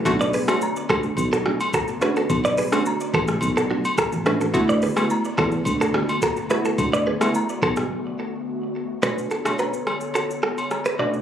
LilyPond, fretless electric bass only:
\new Staff \with { instrumentName = "Fretless electric bass" } { \clef bass \time 4/4 \key b \minor \tempo 4 = 107 b,,8. r8. d,8 b,,8. r4 r16 | b,,8. r8. a,,8 b,,8. r8 a,,8 a,,16 | d,8. r8. e,8 d,8. r4 r16 | d,8. r8. b,,8 r2 |
r1 | }